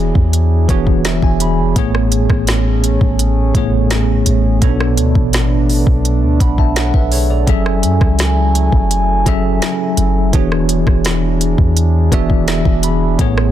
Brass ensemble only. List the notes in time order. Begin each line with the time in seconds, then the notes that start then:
Already playing: D4 E4 G#4
1.76 A3 C#4
4.62 A3 B3 D4
7.47 F#3 A3 E4 G#5
10.33 D4 G#4
13.19 A3 C#4